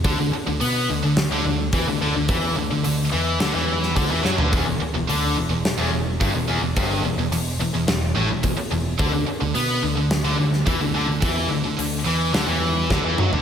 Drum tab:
HH |o---o---o---o---|o---o---o---o---|o---o---o---o---|o---o---o---o---|
SD |--------o-------|--------o--o--o-|--------o-------|--------o-------|
T2 |----------------|----------------|----------------|----------------|
FT |----------------|---------------o|----------------|----------------|
BD |o-----------o---|o-----------o---|o-----------o---|o-----------o---|

HH |o---o---o---o---|o---o---o-------|
SD |--------o--o----|--------o---o---|
T2 |----------------|--------------o-|
FT |----------------|---------------o|
BD |o-----------o---|o-----------o---|